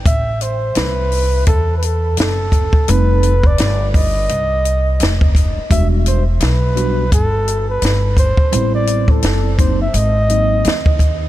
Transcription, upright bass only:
X:1
M:4/4
L:1/16
Q:"Swing 16ths" 1/4=85
K:Ador
V:1 name="Upright bass" clef=bass
A,,,4 C,,4 E,,4 F,,,3 z | =F,,,4 G,,,4 C,,4 F,,,3 z | E,,,4 B,,,4 G,,,4 G,,,3 z | A,,,4 F,,,4 _A,,,4 _E,,4 |]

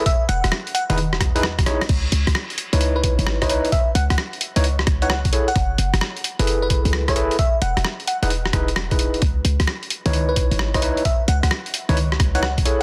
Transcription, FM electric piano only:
X:1
M:4/4
L:1/16
Q:"Swing 16ths" 1/4=131
K:C#m
V:1 name="FM electric piano"
e z f z3 f f z8 | z8 z B z3 c z2 | e z f f z6 z f z3 f- | f3 z6 B B z2 c z2 |
e z f z3 f f z8 | z8 z B B z2 c z2 | e z f f z6 z f f z3 |]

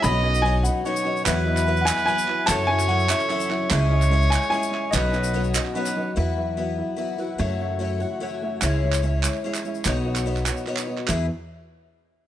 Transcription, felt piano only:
X:1
M:3/4
L:1/8
Q:1/4=146
K:E
V:1 name="Felt piano"
[F,CDBd] [F,CDBd] [F,CDB] [F,CDBd] [F,CDBf] [F,CDBd] | [F,B,EBe] [F,B,EBd] [F,B,EBe] [F,Ed] [F,B,EBe] [F,B,EBe] | [F,CEAe] [F,CEAe] [F,CEAe] [F,CEAe] [F,CEAe] [F,CEAf] | [G,CEce] [G,CEcd] [G,CEce] [G,CEcf] [G,CEce] [G,CEce] |
[F,CDBd] [F,CDBd] [F,CDBf] [F,CDBd] [F,CDBf] [F,CDBd] | [F,EBe] [F,EBe] [F,EBe] [F,EBe] [F,EBe] [F,EBf] | [A,Fce] [A,Fce] [A,Fce] [A,Fcf] [A,Fcf] [A,Fce] | [G,Ece] [G,Ece] [G,Ece] [G,Ece] [G,Ece] [G,Ece] |
[B,Fcd] [B,Fcd] [B,Fcd] [B,Fcf] [B,Fcd] [B,Fcd] | [B,EGe] z4 z |]
V:2 name="Felt piano" clef=bass
[B,,,B,,]6 | E,,6 | [F,,,F,,]6 | [C,,C,]6 |
[B,,,B,,]6 | E,,6 | [F,,,F,,]6 | [C,,C,]6 |
[B,,,B,,]6 | E,, z4 z |]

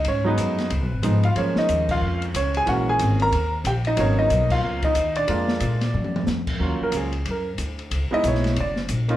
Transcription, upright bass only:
X:1
M:4/4
L:1/8
Q:"Swing" 1/4=183
K:Ebm
V:1 name="Upright bass" clef=bass
A,,2 G,,2 (3D,, C,, A,,, A,,2 | G,, z E,,2 F,,2 D,,2 | B,,,2 A,,,2 E,,2 B,,,2 | A,,,2 C,,2 D,,2 E,,2 |
F,,2 B,,2 G,,2 F,,2 | E,, z D,,2 G,,2 =D,,2 | D,, z C,,2 G,,,2 B,,,2 |]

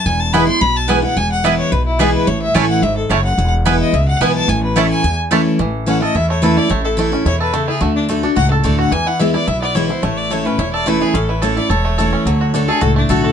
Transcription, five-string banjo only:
X:1
M:4/4
L:1/8
Q:1/4=216
K:A
V:1 name="Five-string banjo"
z2 [B,E] z3 [B,E] z | z2 [B,E] z3 [B,E] z | z2 [A,CE] z3 [A,CE] z | z2 [B,E] z3 [B,E] z |
z2 [A,CE] z3 [A,CE] z | E,2 C A E A, A E | A, E A, C E A A, E | A,2 A, D F A A, F |
E, E E E E B, E E | A,2 A, C E A A, E | C E A E A A, A C | F, F D A F A, A F |]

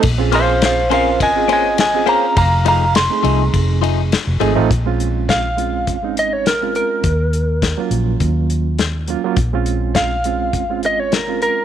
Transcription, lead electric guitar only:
X:1
M:4/4
L:1/16
Q:"Swing 16ths" 1/4=103
K:Bbm
V:1 name="Lead electric guitar"
z2 [cf]2 [cf]2 [cf]2 [ea]2 [ea]2 [ea]2 [fb]2 | [fb]2 [fb]2 c'8 z4 | z4 f6 e d B2 B2- | B6 z8 z2 |
z4 f6 e d B2 B2 |]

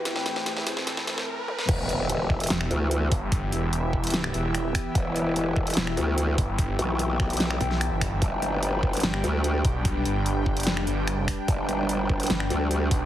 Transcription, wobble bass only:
X:1
M:4/4
L:1/8
Q:1/4=147
K:Em
V:1 name="Wobble bass" clef=bass
z8 | E,,,4 z D,,2 z | z8 | E,,,4 z D,,2 z |
z B,,,4 z3 | G,,,4 z D,,2 z | z8 | G,,,4 z D,,2 z |]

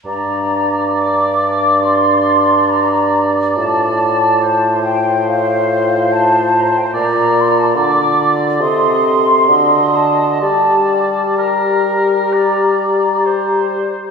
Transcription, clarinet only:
X:1
M:4/4
L:1/8
Q:1/4=69
K:Gm
V:1 name="Clarinet"
D8 | F8 | F2 F2 A2 ^F2 | G2 G4- G z |]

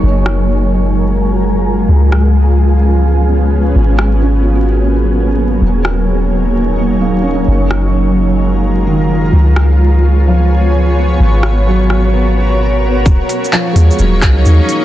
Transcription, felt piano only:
X:1
M:4/4
L:1/16
Q:"Swing 16ths" 1/4=129
K:Ebm
V:1 name="Felt piano"
z16 | z16 | z4 D F G4- G z4 z | z12 B, D E2- |
E3 z8 z E,4- | E, z6 z F,4- F, z3 | z4 G,4- G, z6 z | z4 F, A,3 G,4- G, z3 |]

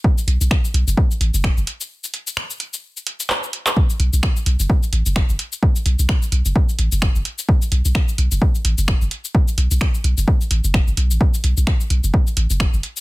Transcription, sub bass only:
X:1
M:4/4
L:1/16
Q:"Swing 16ths" 1/4=129
K:Clyd
V:1 name="Sub bass" clef=bass
z2 B,,, B,,, z2 B,,, F,,, z2 A,,, F,,, z F,,, z2 | z16 | z2 B,,, B,,, z2 B,,, F,,, z2 A,,, F,,, z F,,, z2 | z2 B,,, B,,, z2 B,,, F,,, z2 A,,, F,,, z F,,, z2 |
z2 B,,, B,,, z2 B,,, F,,, z2 A,,, F,,, z F,,, z2 | z2 B,,, B,,, z2 B,,, F,,, z2 A,,, F,,, z F,,, B,,, A,,, | z2 B,,, B,,, z2 B,,, F,,, z2 A,,, F,,, z F,,, z2 |]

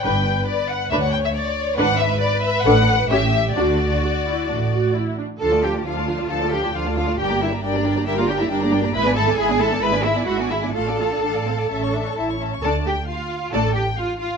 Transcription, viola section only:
X:1
M:4/4
L:1/16
Q:1/4=135
K:D
V:1 name="Viola section"
[DB]2 z6 [DB]2 z6 | [DB]2 z6 [DA]2 z2 [CG]2 z2 | [DF]2 z2 F2 E2 D2 F2 E2 D2 | [K:Dm] [F,D] [A,F] [F,D] [A,F] [F,D] [A,F] [F,D] [A,F] [F,D] [A,F] [F,D] [A,F] [F,D] [A,F] [F,D] [A,F] |
[G,D] [B,G] [G,D] [B,G] [G,D] [B,G] [G,D] [B,G] [G,D] [B,G] [G,D] [B,G] [G,D] [B,G] [G,D] [B,G] | [^G,E] [=B,D] [G,E] [B,D] [G,E] [B,D] [G,E] [B,D] [G,E] [B,D] [G,E] [B,D] [G,E] [B,D] [G,E] [B,D] | [A,F] [DA] [A,F] [DA] D2 C2 ^C2 D2 E2 C2 | [A,D]2 z6 [A,D]2 z6 |]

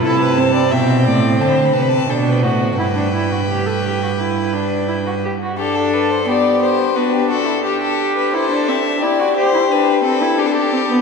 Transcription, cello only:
X:1
M:4/4
L:1/8
Q:1/4=87
K:G
V:1 name="Cello" clef=bass
C,2 B,, A,, D, C, B,, A,, | G,,6- G,, z | z8 | z8 |]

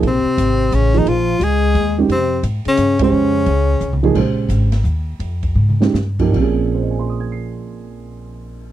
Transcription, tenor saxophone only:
X:1
M:3/4
L:1/8
Q:"Swing" 1/4=175
K:Bbdor
V:1 name="Tenor saxophone"
C4 D E | F2 A3 z | C2 z D2 D- | D4- D z |
z6 | z6 | z6 | z6 |]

